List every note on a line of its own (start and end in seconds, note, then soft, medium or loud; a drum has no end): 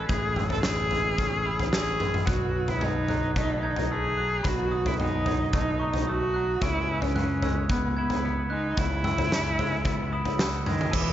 0.00 0.91 G#3 medium
0.00 0.92 C#4 medium
0.00 0.65 E4 medium
0.00 2.23 C#5 medium
0.00 2.24 G#5 soft
0.00 2.23 E6 medium
0.00 0.38 F#6 medium
0.09 2.24 A1 medium
0.09 1.46 A2 medium
0.09 0.48 G#4 medium
0.09 kick medium
0.09 floor tom medium
0.36 0.90 E6 medium
0.36 mid tom medium
0.50 0.64 A4 medium
0.50 floor tom medium
0.63 2.01 E3 medium
0.63 1.70 G#4 medium
0.63 snare medium
0.91 1.99 G#3 medium
0.91 1.46 E6 medium
0.91 floor tom medium
1.18 1.72 C#4 medium
1.18 kick medium
1.18 floor tom medium
1.46 2.28 E4 medium
1.46 1.73 D#6 medium
1.59 floor tom medium
1.72 2.28 C#4 soft
1.72 2.25 G#4 medium
1.72 2.00 E6 medium
1.72 snare medium
2.00 2.28 G#3 soft
2.00 2.28 G#6 medium
2.00 mid tom medium
2.14 mid tom medium
2.26 4.41 B1 medium
2.26 2.82 B2 medium
2.26 2.71 F#4 medium
2.26 6.57 B4 medium
2.26 6.56 F#5 soft
2.26 6.57 D#6 medium
2.26 2.82 F#6 medium
2.26 kick medium
2.26 floor tom medium
2.68 2.85 E4 medium
2.68 floor tom medium
2.81 4.18 B2 medium
2.81 3.36 D#4 medium
2.81 3.09 G#6 medium
2.81 mid tom medium
3.08 4.17 F#3 medium
3.08 3.64 F#6 medium
3.08 floor tom medium
3.36 3.90 A3 medium
3.36 3.75 D#4 medium
3.36 kick medium
3.36 floor tom medium
3.63 5.00 D#4 medium
3.63 4.18 G#6 medium
3.76 floor tom medium
3.92 5.27 A3 medium
3.92 4.48 G#4 medium
4.17 5.27 F#3 medium
4.17 4.72 F#6 medium
4.43 6.58 B1 medium
4.43 4.99 B2 medium
4.43 4.89 F#4 medium
4.43 6.59 B5 soft
4.43 kick medium
4.43 floor tom medium
4.72 5.24 D#6 medium
4.86 5.00 E4 medium
4.86 floor tom medium
5.00 6.35 B2 medium
5.00 5.50 D#4 medium
5.00 mid tom medium
5.26 6.35 F#3 medium
5.26 5.80 D#6 medium
5.26 floor tom medium
5.53 6.08 A3 medium
5.53 5.92 D#4 medium
5.53 kick medium
5.53 floor tom medium
5.79 6.62 D#4 medium
5.79 6.07 C#6 medium
5.93 floor tom medium
6.07 6.63 A3 medium
6.07 6.64 F#4 medium
6.07 6.34 D#6 medium
6.34 6.62 F#3 medium
6.34 6.61 F#6 medium
6.61 8.74 C#2 medium
6.61 7.17 C#3 medium
6.61 7.05 E4 medium
6.61 10.90 B4 medium
6.61 10.90 E5 soft
6.61 10.90 G#5 soft
6.61 8.76 C#6 medium
6.61 7.16 E6 medium
6.61 kick medium
6.61 floor tom medium
7.02 7.70 C#4 medium
7.02 floor tom medium
7.15 8.52 C#3 medium
7.15 7.43 F#6 medium
7.15 mid tom medium
7.42 8.52 G#3 medium
7.42 7.97 E6 medium
7.42 floor tom medium
7.69 7.95 B3 medium
7.69 8.24 B3 medium
7.69 kick medium
7.69 floor tom medium
7.97 8.48 B3 medium
7.97 9.33 E4 medium
7.97 8.51 G#6 medium
8.10 floor tom medium
8.25 9.59 B3 medium
8.50 9.59 G#3 medium
8.50 8.81 D#4 medium
8.50 9.04 F#6 medium
8.77 10.89 C#2 medium
8.77 9.31 C#3 medium
8.77 10.41 E4 medium
8.77 kick medium
8.77 floor tom medium
9.04 9.57 E6 medium
9.04 mid tom medium
9.18 floor tom medium
9.32 10.67 C#3 medium
9.32 snare medium
9.58 10.66 G#3 medium
9.58 10.13 E6 medium
9.58 floor tom medium
9.85 10.38 B3 medium
9.85 kick medium
9.85 floor tom medium
10.13 10.94 E4 medium
10.13 10.40 D#6 medium
10.25 floor tom medium
10.39 10.93 B3 medium
10.39 10.67 E6 medium
10.39 snare medium
10.66 10.96 D#3 medium
10.66 10.94 G#3 medium
10.66 10.94 G#6 medium
10.66 mid tom medium
10.81 mid tom medium
10.91 11.13 E1 medium
10.91 11.13 E3 medium
10.91 11.13 G#4 medium
10.91 11.13 B4 soft
10.91 11.13 G#5 soft
10.91 11.13 B5 medium
10.91 11.13 E6 medium
10.91 kick medium
10.91 floor tom medium
10.91 crash medium